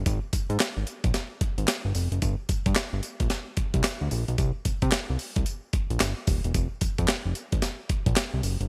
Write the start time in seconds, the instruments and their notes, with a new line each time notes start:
0.06 analog synth bass G#1, kick, closed hi-hat, tambourine
0.33 analog synth bass G#2, kick, closed hi-hat, tambourine
0.50 analog synth bass G#2, closed hi-hat
0.60 snare, clap, closed hi-hat, tambourine
0.77 analog synth bass G#1
0.87 closed hi-hat, tambourine
1.04 analog synth bass A#1, kick, closed hi-hat
1.14 snare, closed hi-hat, tambourine
1.41 analog synth bass G#1, kick, closed hi-hat
1.58 analog synth bass G#1, closed hi-hat
1.67 snare, clap, closed hi-hat, tambourine
1.85 analog synth bass G1
1.95 analog synth bass F1, open hi-hat, tambourine
2.12 analog synth bass F#1, closed hi-hat
2.22 analog synth bass G1, kick, closed hi-hat, tambourine
2.49 analog synth bass G2, kick, closed hi-hat, tambourine
2.66 analog synth bass G2, kick, closed hi-hat
2.75 snare, clap, closed hi-hat, tambourine
2.93 analog synth bass G1
3.03 closed hi-hat, tambourine
3.20 analog synth bass A#1, kick, closed hi-hat
3.30 snare, closed hi-hat, tambourine
3.57 analog synth bass C2, kick, closed hi-hat
3.74 analog synth bass C2, kick, closed hi-hat
3.83 snare, clap, closed hi-hat, tambourine
4.01 analog synth bass D2
4.11 analog synth bass A#1, open hi-hat, tambourine
4.28 analog synth bass B1, closed hi-hat
4.38 analog synth bass C2, kick, closed hi-hat, tambourine
4.65 analog synth bass C3, kick, closed hi-hat, tambourine
4.82 analog synth bass C3, kick, closed hi-hat
4.91 snare, clap, closed hi-hat, tambourine
5.10 analog synth bass C2
5.19 open hi-hat, tambourine
5.36 analog synth bass C2, kick, closed hi-hat
5.46 closed hi-hat, tambourine
5.73 analog synth bass A#1, kick, closed hi-hat
5.90 analog synth bass A#1, closed hi-hat
6.00 analog synth bass G1, snare, clap, closed hi-hat, tambourine
6.27 analog synth bass D#1, kick, open hi-hat, tambourine
6.44 analog synth bass E1, closed hi-hat
6.54 analog synth bass F1, kick, closed hi-hat, tambourine
6.81 analog synth bass F2, kick, closed hi-hat, tambourine
6.98 analog synth bass F2, kick, closed hi-hat
7.08 snare, clap, closed hi-hat, tambourine
7.26 analog synth bass F1
7.35 closed hi-hat, tambourine
7.52 analog synth bass G#1, kick, closed hi-hat
7.62 snare, closed hi-hat, tambourine
7.89 analog synth bass A#1, kick, closed hi-hat
8.06 analog synth bass A#1, kick, closed hi-hat
8.16 snare, clap, closed hi-hat, tambourine
8.34 analog synth bass C2
8.43 analog synth bass F#1, open hi-hat, tambourine
8.61 analog synth bass G1, closed hi-hat